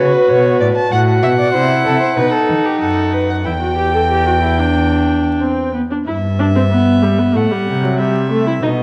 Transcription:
Already playing: F#4 B4 C#5
0.13 B4
0.29 B2 C#5
0.60 A2 D5
0.76 A5
0.91 A2 F#4 F#5
1.22 B2 E5
1.39 D5
1.53 C3 E4 C5
1.86 C3 A4
2.01 C5
2.17 B2 D#4 B4
2.33 A4
2.49 D#3
2.65 G4
2.81 F#2 A4 F#5
3.13 B4
3.29 F#5
3.45 E2 E4 G5
3.61 F#4
3.78 G4
3.94 A4
4.11 G4
4.27 F#4
4.42 E4
4.59 D4
5.40 C4
5.74 B3
5.91 D4
6.07 G2 E4 E5
6.39 D4
6.55 C4
6.71 B3
7.02 G3
7.19 B3
7.35 A2 A3 F#5
7.51 G3
7.68 C3
7.83 F#3
7.99 G3 E5
8.31 A3
8.47 E4
8.63 B2 D#4 D#5

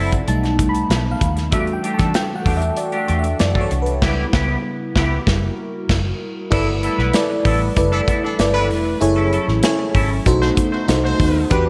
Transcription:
Already playing: F#1 F#3 A3 C4 E4 A4 D5 E5 F#5
0.12 muted clean electric guitar stroke, kick, closed hi-hat
0.27 B1 G3 A3 B3 D#4 A5, muted clean electric guitar stroke, closed hi-hat
0.43 muted clean electric guitar stroke, snare, closed hi-hat
0.59 C2, kick, closed hi-hat
0.69 B5
0.74 muted clean electric guitar stroke, closed hi-hat
0.89 B1, muted clean electric guitar stroke, snare, closed hi-hat
1.05 muted clean electric guitar stroke
1.11 F5
1.21 D#2, kick, closed hi-hat
1.36 muted clean electric guitar stroke, snare, closed hi-hat
1.51 E2 E3 G3 A3 D4 F#4 G4 A4 E5, kick, closed hi-hat
1.67 muted clean electric guitar stroke, closed hi-hat
1.73 G5
1.83 A3 D4 G4, closed hi-hat
1.94 A5
1.98 E3 A3 D4 A4, kick, snare, closed hi-hat
2.14 G5, snare, closed hi-hat
2.30 muted clean electric guitar stroke
2.36 F#5
2.45 E2 A3 D4 G4, kick, open hi-hat
2.57 E5
2.61 muted clean electric guitar stroke, closed hi-hat
2.77 D5, muted clean electric guitar stroke, closed hi-hat
2.92 A3 D4 G4, closed hi-hat
2.97 F#5
3.07 E2 A3 D4 G4, closed hi-hat
3.19 E5
3.23 muted clean electric guitar stroke, closed hi-hat
3.39 F#2 D5, muted clean electric guitar stroke, snare, closed hi-hat
3.55 A3 D4 A4, kick
3.61 C#5
3.70 C2, muted clean electric guitar stroke, closed hi-hat
3.82 B4, muted clean electric guitar stroke
3.86 closed hi-hat
4.02 C#2 C#3 G3 B3 E4 G4, kick, snare, crash
4.33 C#2 B3 E4 G4, kick, snare
4.96 C#2 B3 E4 G4, kick, snare
5.27 F#1 G3 A#3 E4 F#4 A#4, kick, snare
5.89 F#1, kick, snare, crash
6.50 G1 G3 A3 B3 E4 A4 B4 D5, kick, crash
6.67 muted clean electric guitar stroke
6.83 B3 E4 A4, closed hi-hat
6.98 B1 B3 E4 B4, snare
7.13 E4 A4 B4 D5, snare, closed hi-hat
7.30 muted clean electric guitar stroke
7.45 A1 B3 E4 A4, kick, open hi-hat
7.61 muted clean electric guitar stroke
7.76 F#1 E4 A4 B4 D5, muted clean electric guitar stroke, kick, closed hi-hat
7.92 E3 B3 D4 E4 A4
8.08 B3 E4 A4, kick, closed hi-hat
8.23 E3 D4 A4, muted clean electric guitar stroke
8.39 G1 E4 A4 B4 D5, muted clean electric guitar stroke, snare, closed hi-hat
8.54 E3 B3 D4 E4 B4
8.69 F1, muted clean electric guitar stroke, open hi-hat
8.85 muted clean electric guitar stroke
9.00 F#1 F#3 C#4 E4 G#4 A4 C#5, muted clean electric guitar stroke, closed hi-hat
9.16 C#4 E4 A4
9.32 C#4 E4 A4, closed hi-hat
9.48 A1, muted clean electric guitar stroke, snare
9.63 E4 G#4 A4 C#5, muted clean electric guitar stroke, snare, closed hi-hat
9.79 muted clean electric guitar stroke
9.94 G#1 C#4 E4 A4, kick, open hi-hat
10.11 muted clean electric guitar stroke
10.26 B1 A3 B3 D#4 F#4 A4 C5, muted clean electric guitar stroke, kick, closed hi-hat
10.41 A3 F#4 C5, muted clean electric guitar stroke, snare
10.57 kick, closed hi-hat
10.72 A3 F#4 C5, muted clean electric guitar stroke
10.88 C2 D#4 F#4 A4 C5, muted clean electric guitar stroke, snare, closed hi-hat
11.04 A3 F#4 C5, muted clean electric guitar stroke
11.20 D#2, kick, open hi-hat
11.35 muted clean electric guitar stroke
11.50 E2 E3 G3 D4 F#4 G4 B4, kick, closed hi-hat
11.66 muted clean electric guitar stroke

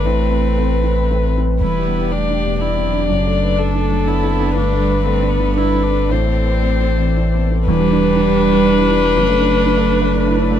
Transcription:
Already playing: A4 B4
0.04 A1 A2 A3 C4
0.30 C4 B4
0.58 A3 C4 B4
0.84 C4 B4
1.11 A3 C4 B4
1.37 C4 B4
1.60 E1 E2 G3 D4 E4 G4 B4 D5
1.79 G3
1.87 B3
1.96 B4
2.12 G3 A3 D4 D5
2.29 D4
2.46 B2
2.61 G3 D4 E4 D5
2.77 C4
2.85 F#3
2.93 D4
3.10 F#1 F#2 D4 A4
3.26 A3
3.43 B4
3.58 A3 A4
3.74 D4
3.91 F#3
4.06 B3 D4 E4
4.24 C4
4.31 B3
4.40 D4
4.55 G1 G2 A3 D4 B4
4.73 A3
4.80 G3
4.89 B4
5.05 G3 A3 C4
5.21 D4
5.31 B3
5.40 D3
5.56 D4 E4 B4
5.74 C4
5.83 D4
5.91 D4
6.09 A1 A2 A3 C4 C5
6.26 A3
6.44 B4
6.62 A3
6.80 C4
6.98 E3
7.17 C4
7.34 B3
7.51 C4
7.67 E1 E2 G3 D4 G4 B4
7.80 G3
7.91 D4
8.03 B4
8.15 D4
8.27 G3
8.40 B4
8.53 G3
8.65 D4
8.78 E4
8.90 D4
9.04 G3
9.16 F#1 F#2 A3 A4
9.29 A3
9.40 D4
9.54 B4
9.65 D4
9.77 A3
9.89 B4
10.02 A3
10.14 D4
10.27 E4
10.38 D4
10.51 A3

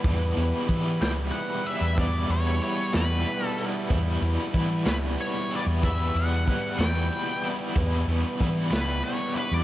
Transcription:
Already playing: G3 E4 B4
0.04 E2 B2 E3 G3 B3 E4, kick, closed hi-hat
0.36 E2 E3 G3 B3 E4, closed hi-hat
0.67 E3 G3 B3 E4, kick, closed hi-hat
1.00 C#2 E2 B2 E3 G3 B3 E4 G5, snare, closed hi-hat
1.32 F#5, closed hi-hat
1.64 E3 G3 B3 E4 E5, closed hi-hat
1.81 E2
1.96 E2 B2 E3 G3 B3 E4 D5, kick, closed hi-hat
2.29 E2 E3 G3 B3 E4 C#5, closed hi-hat
2.61 E3 G3 B3 E4, closed hi-hat
2.93 E2 B2 E3 G3 B3 E4 B4, snare, closed hi-hat
3.26 closed hi-hat
3.46 A4
3.58 E3 G3 B3 E4, closed hi-hat
3.88 E2 B2 E3 G3 B3 E4 B4, kick, closed hi-hat
4.21 E2 E3 G3 B3 E4, closed hi-hat
4.52 E3 G3 B3 E4, kick, closed hi-hat
4.85 C#2 E2 B2 E3 G3 B3 E4 B4, snare, closed hi-hat
5.18 C#5, closed hi-hat
5.51 E3 G3 B3 E4, closed hi-hat
5.56 D5
5.66 E2
5.83 E2 B2 E3 G3 B3 E4 E5, kick, closed hi-hat
6.15 E2 E3 G3 B3 E4 F#5, closed hi-hat
6.47 E3 G3 B3 E4, kick, closed hi-hat
6.79 E2 B2 E3 G3 B3 E4 G5, snare, closed hi-hat
6.83 E2
7.12 closed hi-hat
7.43 E3 G3 B3 E4, closed hi-hat
7.75 E2 B2 E3 G3 B3 E4, kick, closed hi-hat
8.08 E2 E3 G3 B3 E4, closed hi-hat
8.40 E3 G3 B3 E4, kick, closed hi-hat
8.71 C#2 E2 B2 E3 G3 B3 E4 B4, snare, closed hi-hat
9.04 C#5, closed hi-hat
9.35 E3 G3 B3 E4 B4, closed hi-hat
9.51 E2 D5

